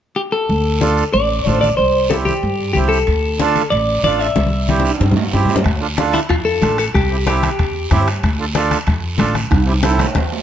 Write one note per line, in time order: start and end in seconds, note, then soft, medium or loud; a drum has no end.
0.16 0.21 G4 medium
0.32 1.13 A4 medium
0.49 1.01 D2 medium
0.49 high conga soft
0.49 long guiro medium
0.81 1.04 D4 medium
0.81 1.04 F4 medium
0.81 1.04 A4 medium
0.81 high conga medium
0.81 short guiro medium
0.97 short guiro medium
1.14 1.40 A1 medium
1.14 1.59 D5 medium
1.14 long guiro medium
1.31 high conga soft
1.46 1.72 A1 medium
1.46 1.69 D4 medium
1.46 1.69 F4 medium
1.46 1.69 A4 medium
1.46 high conga medium
1.46 short guiro medium
1.61 1.77 D5 medium
1.61 high conga medium
1.61 short guiro medium
1.77 2.30 C2 medium
1.77 2.11 C5 medium
1.77 high conga soft
1.77 long guiro medium
2.10 2.33 C4 medium
2.10 2.34 E4 medium
2.10 2.34 G4 medium
2.10 2.15 A4 medium
2.10 high conga medium
2.10 short guiro medium
2.25 2.72 G4 medium
2.25 high conga medium
2.25 short guiro medium
2.43 2.69 G2 medium
2.43 long guiro medium
2.60 high conga soft
2.73 3.01 C2 medium
2.73 2.98 C4 medium
2.73 2.98 E4 medium
2.73 2.78 G4 medium
2.73 2.98 G4 medium
2.73 high conga medium
2.73 short guiro medium
2.89 3.67 A4 medium
2.89 short guiro medium
3.07 3.59 D2 medium
3.07 high conga soft
3.07 high timbale medium
3.07 long guiro medium
3.40 3.62 D4 medium
3.40 3.63 F4 medium
3.40 3.63 A4 medium
3.40 high conga medium
3.40 high timbale medium
3.40 short guiro medium
3.56 high conga medium
3.56 high timbale medium
3.56 short guiro medium
3.70 3.98 A1 medium
3.70 4.03 D5 medium
3.70 high timbale medium
3.70 long guiro medium
3.88 high conga soft
4.04 4.30 A1 medium
4.04 4.27 D4 medium
4.04 4.27 F4 medium
4.04 4.27 A4 medium
4.04 4.19 D5 medium
4.04 high conga medium
4.04 high timbale medium
4.04 short guiro medium
4.19 5.33 E5 medium
4.19 high timbale medium
4.19 short guiro medium
4.36 4.88 C2 medium
4.36 high conga medium
4.36 high timbale medium
4.36 long guiro medium
4.47 high conga medium
4.68 4.91 C4 medium
4.68 4.91 E4 medium
4.68 4.92 G4 medium
4.68 high conga loud
4.68 high timbale medium
4.68 short guiro medium
4.80 high conga medium
4.85 high timbale medium
4.85 short guiro medium
4.95 high timbale medium
5.00 5.26 G2 medium
5.00 low conga medium
5.00 long guiro medium
5.06 high timbale medium
5.11 low conga medium
5.17 low timbale medium
5.33 5.59 G2 medium
5.33 5.56 C4 medium
5.33 5.56 E4 medium
5.33 5.56 G4 medium
5.33 low conga medium
5.33 short guiro medium
5.45 low conga medium
5.45 low timbale medium
5.49 short guiro medium
5.56 low conga medium
5.56 low timbale medium
5.64 6.17 D2 medium
5.64 bombo low medium
5.64 bombo rim medium
5.64 high conga soft
5.64 high timbale medium
5.64 long guiro medium
5.81 5.87 D4 medium
5.81 5.87 F4 medium
5.81 5.87 A4 medium
5.97 6.20 D4 medium
5.97 6.20 F4 medium
5.97 6.20 A4 loud
5.97 bombo rim medium
5.97 high conga loud
5.97 high timbale medium
5.97 short guiro medium
6.13 6.19 E4 medium
6.13 bombo rim medium
6.13 high conga medium
6.13 high timbale medium
6.13 short guiro medium
6.29 6.56 F2 medium
6.29 6.35 F4 medium
6.29 bombo low medium
6.29 bombo rim medium
6.29 high timbale medium
6.29 long guiro medium
6.45 6.75 A4 medium
6.45 high conga soft
6.61 6.87 A1 medium
6.61 6.79 D4 medium
6.61 6.79 F4 medium
6.61 6.79 A4 medium
6.61 bombo rim medium
6.61 high conga medium
6.61 high timbale medium
6.61 short guiro medium
6.78 6.84 A4 medium
6.78 bombo rim medium
6.78 high timbale medium
6.78 short guiro medium
6.94 7.46 C2 medium
6.94 7.24 G4 medium
6.94 bombo low medium
6.94 bombo rim medium
6.94 high conga soft
6.94 high timbale medium
6.94 long guiro medium
7.11 7.16 C4 medium
7.11 7.17 E4 medium
7.11 7.17 G4 medium
7.27 7.49 C4 medium
7.27 7.50 E4 medium
7.27 8.03 G4 medium
7.27 7.50 G4 medium
7.27 bombo rim medium
7.27 high conga medium
7.27 high timbale medium
7.27 short guiro medium
7.43 bombo rim medium
7.43 high conga medium
7.43 high timbale medium
7.43 short guiro medium
7.59 7.85 E2 medium
7.59 bombo low medium
7.59 bombo rim medium
7.59 high timbale medium
7.59 long guiro medium
7.74 high conga soft
7.91 8.17 G2 medium
7.91 8.08 C4 medium
7.91 8.08 E4 medium
7.91 8.08 G4 medium
7.91 bombo low medium
7.91 bombo rim medium
7.91 high conga medium
7.91 high timbale medium
7.91 low timbale medium
7.91 short guiro medium
8.08 bombo rim medium
8.08 high timbale medium
8.08 short guiro medium
8.23 8.75 D2 medium
8.23 bombo low medium
8.23 bombo rim medium
8.23 high conga soft
8.23 high timbale medium
8.23 long guiro medium
8.40 8.45 D4 medium
8.40 8.45 F4 medium
8.40 8.45 A4 medium
8.55 8.78 D4 medium
8.55 8.78 F4 medium
8.55 8.78 A4 medium
8.55 bombo rim medium
8.55 high conga medium
8.55 high timbale medium
8.55 short guiro medium
8.71 bombo rim medium
8.71 high conga medium
8.71 high timbale medium
8.71 short guiro medium
8.87 9.13 F2 medium
8.87 bombo low medium
8.87 bombo rim medium
8.87 high timbale medium
8.87 long guiro medium
9.03 high conga soft
9.18 9.45 A1 medium
9.18 9.36 D4 medium
9.18 9.36 F4 medium
9.18 9.36 A4 medium
9.18 bombo rim medium
9.18 high conga medium
9.18 high timbale medium
9.18 short guiro medium
9.34 bombo rim medium
9.34 high conga medium
9.34 high timbale medium
9.34 short guiro medium
9.51 10.03 C2 loud
9.51 bombo low medium
9.51 bombo rim medium
9.51 high conga soft
9.51 high timbale medium
9.51 long guiro medium
9.67 9.73 C4 medium
9.67 9.73 E4 medium
9.67 9.73 G4 medium
9.67 high timbale medium
9.83 10.06 C4 medium
9.83 10.06 E4 medium
9.83 10.06 A4 medium
9.83 bombo rim medium
9.83 high conga medium
9.83 high timbale medium
9.83 short guiro medium
9.99 bombo rim medium
9.99 high conga medium
9.99 low timbale medium
9.99 short guiro medium
10.15 10.42 E2 medium
10.15 bombo low medium
10.15 bombo rim medium
10.15 high conga medium
10.15 low timbale medium
10.15 long guiro medium
10.33 low timbale medium